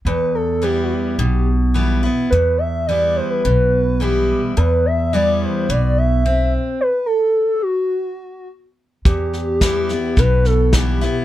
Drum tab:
HH |--------|--------|--------|--------|
SD |--------|--------|--------|--------|
BD |--------|--------|--------|--------|

HH |--p---p-|
SD |oooooooo|
BD |o-o-o-o-|